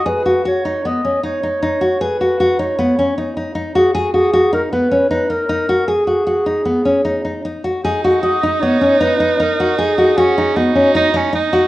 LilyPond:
<<
  \new Staff \with { instrumentName = "Clarinet" } { \time 5/4 \key gis \minor \tempo 4 = 155 b'4 cis''4 dis''4 cis''2 | b'4. cis''2 r4 gis'8 | fis'8 gis'4 ais'8 b'4 b'8 ais'4. | gis'1 r4 |
r4 dis''4 cis''4 b'4 ais'4 | gis'2 fis'2 r4 | }
  \new Staff \with { instrumentName = "Nylon-string guitar" } { \time 5/4 \key gis \minor gis'8 fis'8 fis'8 dis'8 b8 cis'8 dis'8 dis'8 dis'8 fis'8 | gis'8 fis'8 fis'8 dis'8 b8 cis'8 dis'8 dis'8 dis'8 fis'8 | gis'8 fis'8 fis'8 dis'8 b8 cis'8 dis'8 dis'8 dis'8 fis'8 | gis'8 fis'8 fis'8 dis'8 b8 cis'8 dis'8 dis'8 dis'8 fis'8 |
gis'8 fis'8 fis'8 dis'8 b8 cis'8 dis'8 dis'8 dis'8 fis'8 | gis'8 fis'8 fis'8 dis'8 b8 cis'8 dis'8 dis'8 dis'8 fis'8 | }
  \new Staff \with { instrumentName = "Soprano saxophone" } { \time 5/4 \key gis \minor r1 r4 | r1 r4 | r1 r4 | r1 r4 |
dis'1~ dis'4~ | dis'4 cis'4 dis'4 dis'8 cis'8 dis'4 | }
>>